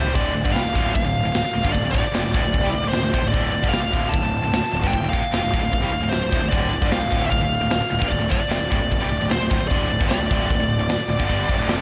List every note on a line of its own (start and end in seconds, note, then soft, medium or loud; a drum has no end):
0.00 0.13 C3 medium
0.00 0.13 C5 medium
0.05 0.14 C2 medium
0.05 0.14 G3 loud
0.14 0.34 D1 medium
0.14 0.33 D2 medium
0.14 0.33 A2 medium
0.14 0.34 D3 medium
0.14 0.52 D5 medium
0.14 kick loud
0.14 open hi-hat soft
0.34 0.44 D1 medium
0.34 0.44 D2 medium
0.34 0.45 A2 medium
0.44 0.54 G1 medium
0.44 0.53 G2 medium
0.44 0.54 D3 loud
0.44 kick loud
0.52 0.63 C2 medium
0.52 0.64 C3 medium
0.52 0.64 G3 medium
0.52 0.94 F5 medium
0.52 snare medium
0.52 open hi-hat medium
0.64 0.73 D1 medium
0.64 0.74 D2 medium
0.64 0.74 A2 medium
0.75 0.94 D1 medium
0.75 0.93 D2 loud
0.75 0.94 A2 medium
0.75 0.94 D3 medium
0.75 kick loud
0.94 1.03 D1 medium
0.94 1.03 D2 medium
0.94 1.04 A2 medium
0.94 1.71 F5 loud
0.94 kick medium
0.94 open hi-hat medium
1.03 1.22 D1 medium
1.03 1.20 D2 medium
1.03 1.21 A2 medium
1.25 1.34 D1 medium
1.25 1.34 D2 medium
1.25 1.34 A2 medium
1.35 1.44 D1 medium
1.35 1.43 D2 medium
1.35 1.45 A2 medium
1.35 snare loud
1.35 open hi-hat medium
1.45 muted distorted electric guitar stroke medium
1.45 muted picked electric bass stroke soft
1.55 1.64 D1 medium
1.55 1.63 D2 medium
1.55 1.64 A2 medium
1.63 1.74 G1 medium
1.63 1.73 G2 medium
1.63 1.74 D3 loud
1.63 kick loud
1.72 1.84 D1 medium
1.72 1.83 D2 medium
1.72 1.84 A2 medium
1.72 1.90 D5 medium
1.72 kick medium
1.72 open hi-hat soft
1.84 1.94 D1 medium
1.84 1.93 D2 medium
1.84 1.94 A2 medium
1.92 2.04 D1 medium
1.92 2.03 D2 medium
1.92 2.04 A2 loud
1.92 2.88 D5 medium
1.92 kick loud
2.04 muted distorted electric guitar stroke medium
2.04 muted picked electric bass stroke soft
2.14 2.24 F1 medium
2.14 2.24 F2 medium
2.14 2.24 C3 loud
2.14 snare medium
2.14 open hi-hat medium
2.25 2.33 D1 medium
2.25 2.33 D2 medium
2.25 2.34 A2 medium
2.34 2.43 D1 medium
2.34 2.44 D2 medium
2.34 2.44 A2 loud
2.34 kick medium
2.45 2.53 D1 medium
2.45 2.53 D2 medium
2.45 2.53 A2 medium
2.54 2.63 D1 medium
2.54 2.63 D2 medium
2.54 2.64 A2 medium
2.54 kick medium
2.54 open hi-hat medium
2.63 2.74 C2 medium
2.63 2.73 C3 medium
2.63 2.73 G3 medium
2.73 2.84 D1 medium
2.73 2.82 D2 medium
2.73 2.83 A2 medium
2.83 2.94 D1 medium
2.83 2.92 D2 medium
2.83 2.92 A2 medium
2.88 3.28 C5 medium
2.93 3.04 D1 medium
2.93 3.02 D2 medium
2.93 3.02 A2 medium
2.93 snare loud
2.93 open hi-hat soft
3.03 3.13 D1 medium
3.03 3.12 D2 medium
3.03 3.13 A2 medium
3.13 3.23 D1 medium
3.13 3.22 D2 medium
3.13 3.22 A2 medium
3.13 kick loud
3.23 3.33 D1 medium
3.23 3.32 D2 medium
3.23 3.33 A2 medium
3.28 3.72 D5 loud
3.33 3.52 D1 medium
3.33 3.53 D2 medium
3.33 3.53 A2 medium
3.33 3.53 D3 medium
3.33 kick loud
3.33 open hi-hat soft
3.52 3.62 D1 medium
3.52 3.63 D2 medium
3.52 3.63 A2 medium
3.63 3.73 G1 medium
3.63 3.72 G2 medium
3.63 3.73 D3 medium
3.63 kick loud
3.69 3.82 C3 medium
3.69 4.08 F5 medium
3.73 3.83 C2 medium
3.73 3.83 G3 loud
3.73 snare loud
3.73 open hi-hat soft
3.83 3.92 D1 medium
3.83 3.91 D2 medium
3.83 3.92 A2 medium
3.92 4.12 D1 medium
3.92 4.11 D2 medium
3.92 4.12 A2 medium
3.92 4.13 D3 loud
3.92 kick loud
4.09 4.23 D2 medium
4.09 4.93 A5 loud
4.13 4.23 D1 medium
4.13 4.23 A2 medium
4.13 kick medium
4.13 open hi-hat medium
4.24 4.42 D1 medium
4.24 4.40 D2 medium
4.24 4.40 A2 medium
4.43 4.52 D1 medium
4.43 4.53 D2 medium
4.43 4.53 A2 medium
4.53 4.62 D1 medium
4.53 4.63 D2 medium
4.53 4.64 A2 medium
4.53 snare loud
4.53 open hi-hat medium
4.64 muted picked electric bass stroke soft
4.64 muted distorted electric guitar stroke medium
4.73 4.82 D1 medium
4.73 4.83 D2 medium
4.73 4.83 A2 medium
4.83 4.93 G1 medium
4.83 4.93 G2 medium
4.83 4.93 D3 medium
4.83 5.09 G5 loud
4.83 kick medium
4.93 5.03 D1 medium
4.93 5.03 D2 medium
4.93 5.03 A2 medium
4.93 kick medium
4.93 open hi-hat medium
5.04 5.13 D1 medium
5.04 5.12 D2 medium
5.04 5.13 A2 medium
5.10 5.23 D1 medium
5.10 5.22 D2 medium
5.10 6.14 F5 medium
5.10 kick loud
5.14 5.23 A2 loud
5.23 muted distorted electric guitar stroke medium
5.23 muted picked electric bass stroke soft
5.32 5.42 F1 medium
5.32 5.42 F2 medium
5.32 5.42 C3 medium
5.32 snare loud
5.32 open hi-hat medium
5.42 5.53 D1 medium
5.42 5.52 D2 medium
5.42 5.53 A2 medium
5.53 5.62 D1 medium
5.53 5.61 D2 medium
5.53 5.62 A2 loud
5.53 kick medium
5.62 5.72 D1 medium
5.62 5.71 D2 medium
5.62 5.72 A2 medium
5.73 5.82 D1 medium
5.73 5.82 D2 medium
5.73 5.83 A2 medium
5.73 kick medium
5.73 open hi-hat medium
5.82 5.92 C2 medium
5.82 5.92 C3 medium
5.82 5.92 G3 medium
5.93 6.03 D1 medium
5.93 6.02 D2 medium
5.93 6.02 A2 medium
6.03 6.12 D1 medium
6.03 6.11 D2 medium
6.03 6.12 A2 medium
6.09 6.21 D2 medium
6.09 6.22 A2 medium
6.09 6.49 C5 medium
6.09 snare loud
6.09 open hi-hat medium
6.14 6.22 D1 medium
6.22 6.31 D1 medium
6.22 6.31 D2 medium
6.22 6.32 A2 medium
6.32 6.41 D1 loud
6.32 6.41 D2 medium
6.32 6.42 A2 medium
6.32 kick loud
6.43 6.52 D1 medium
6.43 6.51 D2 soft
6.43 6.51 A2 medium
6.49 6.71 D1 medium
6.49 6.71 D2 medium
6.49 6.71 A2 medium
6.49 6.92 D5 medium
6.49 kick medium
6.49 open hi-hat soft
6.53 6.72 D3 medium
6.72 6.82 D1 medium
6.72 6.81 D2 medium
6.72 6.82 A2 medium
6.82 6.91 G1 medium
6.82 6.91 G2 medium
6.82 6.92 D3 loud
6.82 kick loud
6.91 7.02 C2 medium
6.91 7.01 C3 medium
6.91 7.00 G3 loud
6.91 7.26 F5 medium
6.91 snare loud
6.91 open hi-hat soft
7.01 7.12 D1 medium
7.01 7.09 D2 medium
7.01 7.10 A2 medium
7.10 7.31 D1 medium
7.10 7.29 D2 medium
7.10 7.30 A2 medium
7.10 7.31 D3 medium
7.10 kick medium
7.26 7.30 E5 medium
7.30 7.41 D1 medium
7.30 7.39 D2 medium
7.30 7.40 A2 medium
7.30 8.07 F5 medium
7.30 kick medium
7.30 open hi-hat medium
7.40 7.61 D1 medium
7.40 7.57 D2 medium
7.40 7.57 A2 medium
7.61 7.72 D1 medium
7.61 7.69 D2 medium
7.61 7.70 A2 medium
7.70 7.82 D1 medium
7.70 7.80 D2 medium
7.70 7.81 A2 medium
7.70 snare loud
7.70 open hi-hat medium
7.81 muted distorted electric guitar stroke medium
7.81 muted picked electric bass stroke soft
7.90 8.01 D1 medium
7.90 7.98 D2 medium
7.90 7.99 A2 medium
7.99 8.11 G1 medium
7.99 8.09 G2 medium
7.99 8.09 D3 medium
7.99 kick medium
8.08 8.21 D1 medium
8.08 8.18 D2 medium
8.08 8.18 A2 medium
8.08 8.28 D5 medium
8.08 kick medium
8.08 open hi-hat medium
8.19 8.31 D1 medium
8.19 8.28 D2 medium
8.19 8.28 A2 medium
8.29 8.41 D1 medium
8.29 8.39 D2 medium
8.29 8.40 A2 loud
8.29 9.30 D5 medium
8.29 kick loud
8.40 muted distorted electric guitar stroke medium
8.40 muted picked electric bass stroke soft
8.49 8.60 F1 medium
8.49 8.59 F2 medium
8.49 8.60 C3 loud
8.49 snare loud
8.49 open hi-hat medium
8.60 8.70 D1 medium
8.60 8.68 D2 medium
8.60 8.69 A2 medium
8.70 8.81 D1 medium
8.70 8.79 D2 medium
8.70 8.79 A2 medium
8.70 kick loud
8.80 8.90 D1 medium
8.80 8.90 D2 medium
8.80 8.91 A2 medium
8.91 9.01 D1 medium
8.91 9.00 D2 medium
8.91 9.01 A2 medium
8.91 kick medium
8.91 open hi-hat medium
9.00 9.10 C2 medium
9.00 9.10 C3 medium
9.00 9.10 G3 medium
9.10 9.20 D1 medium
9.10 9.20 D2 medium
9.10 9.20 A2 medium
9.21 9.30 D1 medium
9.21 9.30 D2 medium
9.21 9.30 A2 medium
9.30 9.39 D1 medium
9.30 9.40 D2 soft
9.30 9.40 A2 medium
9.30 9.68 C5 medium
9.30 snare loud
9.30 open hi-hat medium
9.40 9.49 D1 medium
9.40 9.49 D2 medium
9.40 9.49 A2 medium
9.50 9.60 D1 medium
9.50 9.59 D2 medium
9.50 9.59 A2 loud
9.50 kick loud
9.60 9.70 D1 medium
9.60 9.69 D2 medium
9.60 9.69 A2 medium
9.68 9.89 D1 medium
9.68 9.89 D2 medium
9.68 9.89 A2 medium
9.68 9.90 D3 medium
9.68 10.06 D5 medium
9.68 kick medium
9.68 open hi-hat medium
9.90 10.00 D1 medium
9.90 10.00 D2 medium
9.90 10.01 A2 medium
10.01 10.09 G1 loud
10.01 10.10 G2 medium
10.01 10.10 D3 loud
10.01 kick loud
10.09 10.19 C2 medium
10.09 10.19 C3 loud
10.09 10.20 G3 loud
10.09 11.81 D5 medium
10.09 snare loud
10.09 open hi-hat medium
10.20 10.29 D1 medium
10.20 10.28 D2 medium
10.20 10.29 A2 medium
10.29 10.49 D1 medium
10.29 10.49 D2 medium
10.29 10.49 A2 medium
10.29 10.49 D3 medium
10.29 kick loud
10.50 10.58 D1 medium
10.50 10.59 D2 medium
10.50 10.59 A2 medium
10.50 kick medium
10.50 open hi-hat medium
10.59 10.78 D1 medium
10.59 10.76 D2 medium
10.59 10.76 A2 medium
10.79 10.88 D1 medium
10.79 10.88 D2 medium
10.79 10.88 A2 medium
10.89 10.98 D1 medium
10.89 10.98 D2 medium
10.89 10.99 A2 medium
10.89 snare loud
10.89 open hi-hat medium
10.99 muted distorted electric guitar stroke medium
10.99 muted picked electric bass stroke soft
11.08 11.18 D1 medium
11.08 11.19 D2 medium
11.08 11.19 A2 medium
11.19 11.29 G1 medium
11.19 11.27 G2 medium
11.19 11.28 D3 medium
11.19 kick loud
11.29 11.48 G1 medium
11.29 11.48 G2 medium
11.29 11.48 D3 medium
11.29 11.48 G3 medium
11.29 kick medium
11.29 open hi-hat medium
11.49 11.57 F1 medium
11.49 11.58 F2 medium
11.49 11.59 C3 medium
11.49 kick loud
11.58 11.68 D1 medium
11.58 11.68 D2 medium
11.58 11.69 A2 medium
11.68 11.81 F1 medium
11.68 11.81 F2 medium
11.68 11.81 C3 medium
11.68 11.81 F3 medium
11.68 snare loud
11.68 open hi-hat medium